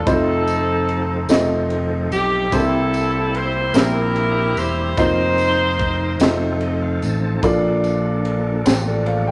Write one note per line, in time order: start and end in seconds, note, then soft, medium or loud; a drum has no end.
0.05 1.25 F1 loud
0.05 0.13 G3 medium
0.05 2.48 C4 medium
0.05 0.96 C4 medium
0.05 2.48 D#4 medium
0.05 0.96 D#4 medium
0.05 0.96 F4 medium
0.05 2.48 A4 medium
0.05 0.96 C5 medium
0.05 kick loud
0.05 ride medium
0.05 tambourine medium
0.10 0.99 A3 medium
0.10 1.68 C4 medium
0.10 1.68 D#4 medium
0.10 1.68 A4 medium
0.47 ride soft
0.47 tambourine medium
0.89 ride soft
1.29 2.07 F1 loud
1.29 2.19 A3 medium
1.29 2.19 C4 medium
1.29 2.19 D#4 medium
1.29 2.19 F4 medium
1.29 2.19 D#5 medium
1.29 snare loud
1.29 ride medium
1.29 tambourine medium
1.70 ride soft
2.11 2.49 B1 medium
2.11 2.50 G4 medium
2.11 ride soft
2.11 tambourine medium
2.51 3.71 C2 loud
2.51 3.71 C3 medium
2.51 4.93 G3 medium
2.51 4.93 A#3 medium
2.51 3.42 A#3 medium
2.51 4.93 C4 medium
2.51 3.42 C4 medium
2.51 2.59 D4 medium
2.51 4.93 E4 soft
2.51 3.72 E4 medium
2.51 3.42 G4 medium
2.51 3.34 A4 medium
2.51 3.42 C5 loud
2.51 kick loud
2.51 ride medium
2.51 tambourine medium
2.59 3.45 E4 medium
2.93 ride soft
2.93 tambourine medium
3.34 3.75 C5 medium
3.34 ride soft
3.74 4.52 A#1 loud
3.74 4.64 A#3 medium
3.74 4.64 C4 medium
3.74 4.64 E4 medium
3.74 4.95 E4 medium
3.74 4.65 G4 medium
3.74 4.95 G4 medium
3.74 4.56 A#4 loud
3.74 4.65 C5 medium
3.74 snare loud
3.74 ride medium
3.74 tambourine loud
4.16 ride soft
4.55 4.94 E1 medium
4.55 4.96 C5 loud
4.55 ride soft
4.55 tambourine medium
4.96 6.16 F1 loud
4.96 6.20 F3 medium
4.96 5.87 A#3 medium
4.96 6.20 C4 medium
4.96 5.87 C4 medium
4.96 6.19 D#4 medium
4.96 5.87 D#4 medium
4.96 6.58 D#4 medium
4.96 5.88 F4 medium
4.96 6.20 A#4 medium
4.96 6.57 C5 loud
4.96 5.88 C5 medium
4.96 kick loud
4.96 ride medium
4.96 tambourine medium
5.38 ride soft
5.38 tambourine medium
5.79 kick medium
5.79 ride soft
6.20 6.98 F1 loud
6.20 7.41 F3 medium
6.20 7.10 A3 medium
6.20 7.10 C4 medium
6.20 7.44 C4 medium
6.20 7.43 D#4 medium
6.20 7.10 D#4 medium
6.20 7.11 F4 medium
6.20 6.27 G4 medium
6.20 7.11 C5 medium
6.20 snare loud
6.20 ride medium
6.20 tambourine loud
6.27 7.41 A4 medium
6.61 6.80 D#5 medium
6.61 ride soft
6.82 7.01 F5 medium
7.02 7.40 A1 medium
7.02 7.41 A5 medium
7.02 ride soft
7.02 tambourine medium
7.42 8.62 A#1 loud
7.42 8.62 A#2 medium
7.42 9.31 F3 medium
7.42 9.31 A#3 medium
7.42 8.33 A#3 medium
7.42 8.33 D4 medium
7.42 9.31 D4 medium
7.42 8.33 F4 loud
7.42 9.31 A4 medium
7.42 8.33 A4 medium
7.42 8.33 D5 loud
7.42 kick loud
7.42 ride medium
7.42 tambourine medium
7.84 ride soft
7.84 tambourine soft
8.25 ride soft
8.65 9.31 A1 medium
8.65 8.85 G4 medium
8.65 8.85 C5 medium
8.65 snare loud
8.65 ride medium
8.65 tambourine loud
8.86 9.06 A4 medium
8.86 9.05 D5 medium
9.06 9.26 C5 medium
9.06 9.26 F5 medium
9.06 ride soft
9.27 9.31 D5 medium
9.27 9.31 G5 medium